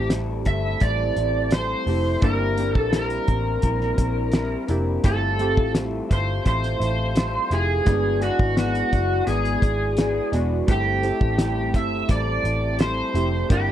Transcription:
Already playing: A1 A3 C4 E4 G4 A4
0.10 G3 C4 E4 A4, snare, closed hi-hat
0.45 G1 C4 E4 A4 E5, kick, closed hi-hat
0.80 A1 G3 C4 E4 A4 D5, kick, closed hi-hat
1.16 A1 C4 E4 A4, closed hi-hat
1.51 G3 C4 E4 A4 C5, snare, closed hi-hat
1.86 F1 A3 C4 E4 G4 A4, open hi-hat
2.22 G1 G3 A#3 C4 D4 E4 G4 A#4, kick, closed hi-hat
2.57 A#3 C4 D4 E4 G4 A#4, closed hi-hat
2.74 A#1 A4, kick
2.92 G3 C4 E4 A#4, snare, closed hi-hat
2.96 A#4
3.10 closed hi-hat
3.27 A1 C4 E4 A#4, kick, closed hi-hat
3.62 A#1 G3 C4 E4 A#4, kick, closed hi-hat
3.81 snare
3.97 A#1 C4 E4 A#4, kick, closed hi-hat
4.32 G3 C4 E4 A#4, snare, closed hi-hat
4.68 F1 A#3 C4 D4 E4 G4 A#4, closed hi-hat
5.03 G1 G3 A3 C4 E4 F4 G4 A4 E5, kick, closed hi-hat
5.39 A3 C4 E4 F4 G4 A4 E5, closed hi-hat
5.57 A1, kick
5.74 G3 C4 F4 A4 E5, snare, closed hi-hat
6.09 G1 F4 A4 C5 E5, kick, closed hi-hat
6.45 A1 C4 F4 A4 C5 E5, kick, closed hi-hat
6.64 snare, closed hi-hat
6.80 A1 F4 A4 E5, closed hi-hat
7.15 G3 C4 F4 A4 E5, snare, closed hi-hat
7.50 F1 A3 C4 E4 F4 G4 G#4 E5, closed hi-hat
7.85 G1 G#3 B3 D4 E4 F#4 G#4 D5, kick, closed hi-hat
8.20 G#3 B3 D4 E4 F#4 G#4 D5, closed hi-hat
8.39 G#1, kick
8.57 B3 E4 F#4 G#4 D5, snare, closed hi-hat
8.75 closed hi-hat
8.91 F#1 E4 G#4 D5, kick, closed hi-hat
9.26 G#1 B3 E4 G#4 D5, closed hi-hat
9.45 closed hi-hat
9.61 G#1 E4 G#4 D5, kick, closed hi-hat
9.97 B3 E4 G#4 D5, snare, closed hi-hat
10.32 E1 G#3 B3 D4 E4 F#4 G#4 D5, closed hi-hat
10.67 G1 G3 A3 C4 E4 G4 A4, kick, closed hi-hat
10.71 G4
11.02 A3 C4 E4 G4 A4, closed hi-hat
11.21 A1, kick
11.37 G3 C4 E4 A4, snare, closed hi-hat
11.73 G1 C4 E4 A4 E5, kick, closed hi-hat
12.08 A1 G3 C4 E4 A4 D5, kick, closed hi-hat
12.44 A1 C4 E4 A4, closed hi-hat
12.79 G3 C4 E4 A4 C5, snare, closed hi-hat
13.13 F1 A3 C4 E4 G4 A4, closed hi-hat
13.49 G1 G3 A#3 C4 D4 E4 G4 A#4, kick, closed hi-hat

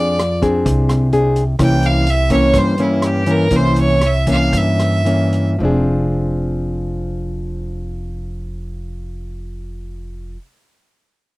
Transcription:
Already playing: F2 F3 C4 D4 G#4 D5
0.19 cross-stick, closed hi-hat
0.42 C4 D4 G#4, kick, closed hi-hat
0.65 C2 C3, kick, closed hi-hat
0.89 cross-stick, closed hi-hat
1.12 C4 D4 G#4, closed hi-hat
1.36 closed hi-hat
1.59 C2 C3 E3 A#3 C#4, kick, cross-stick, closed hi-hat
1.64 G5
1.83 F5, closed hi-hat
2.06 E5, closed hi-hat
2.30 E3 A#3 C#4 C#5, kick, closed hi-hat
2.53 G2, kick, cross-stick, closed hi-hat
2.58 C5
2.78 E3 A#3 C#4 E4, closed hi-hat
3.02 cross-stick, closed hi-hat
3.06 G4
3.26 E3 A#3 C#4, closed hi-hat
3.31 A#4
3.50 C2 C3 E3 A#3 C#4, kick, closed hi-hat
3.56 C5
3.76 C#5, closed hi-hat
4.01 cross-stick, closed hi-hat
4.06 E5
4.27 E3 A#3 C#4, kick, closed hi-hat
4.31 F5
4.53 G2, kick, closed hi-hat
4.57 E5
4.79 cross-stick, closed hi-hat
5.05 E3 A#3 C#4, closed hi-hat
5.33 closed hi-hat
5.59 F1 F3 C4
5.63 D4 G#4

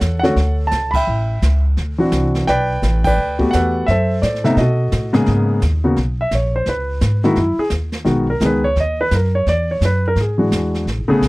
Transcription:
Already playing: A4 C#5 F#5
0.01 E2, snare, hi-hat pedal
0.19 D3 F#5
0.24 A3 C#4 F#4 A4 C#5, snare
0.36 D2, brush sweep, snare
0.67 A5
0.71 C#2, snare, hi-hat pedal
0.91 B5, kick, crash
0.95 E5 G5
1.07 A1, brush sweep
1.42 C#2, snare, hi-hat pedal
1.77 D2, brush sweep, snare
1.98 E3 C4 D4 F#4
2.12 C2, snare, hi-hat pedal
2.35 snare
2.47 B1 B4 D5 G5, brush sweep, snare
2.82 A1, snare, hi-hat pedal
3.04 B4 D5 G5, kick, crash
3.17 D2, brush sweep
3.39 A3 B3 F#4 G4, kick
3.51 E2 A4 B4 F#5, snare, hi-hat pedal
3.86 F#2 E5, brush sweep, snare
3.90 A4 C5
4.22 A2 C#5 D5, snare, hi-hat pedal
4.35 snare
4.44 C3 A3 B3 D#4 E5, snare
4.57 B2 F#4 D#5, brush sweep, snare
4.61 A4
4.92 A2, snare, hi-hat pedal
5.13 G#2 C#3 A#3 B3 G#4, snare
5.26 G#2, brush sweep, snare
5.62 D#2, snare, hi-hat pedal
5.84 C#3 A#3 B3 F#4
5.96 B1, brush sweep, snare
6.21 E5
6.31 A#1 C#5, snare, hi-hat pedal
6.56 C5
6.66 C#2 B4, brush sweep, snare
7.01 G#2, snare, hi-hat pedal
7.23 D#3 G#3 A#3 E4 F#4, snare
7.35 F#2 E4, brush sweep, snare
7.58 G#4, muted upright bass stroke
7.70 D#2, snare, hi-hat pedal
7.92 snare
8.04 B1 D#3 G#3 B3 F#4, brush sweep, snare
8.30 A#4
8.40 C#2 D#3 G#3 B3 G#4, snare, hi-hat pedal
8.46 B4
8.64 C#5
8.76 D#2, brush sweep, snare
8.80 D#5
9.01 B4
9.11 F#2 A#4, snare, hi-hat pedal
9.35 C#5
9.46 E2 D5, brush sweep, snare
9.71 C#5
9.81 F#2, snare, hi-hat pedal
9.85 B4
10.08 A#4
10.16 G#2, brush sweep, snare
10.21 G#4
10.38 E3 G#3 D4 F#4
10.51 E2, snare, hi-hat pedal
10.74 snare
10.86 A1, brush sweep, snare
10.99 G#1
11.08 E1 C#3 A3 B3 G#4
11.21 B1, snare, hi-hat pedal

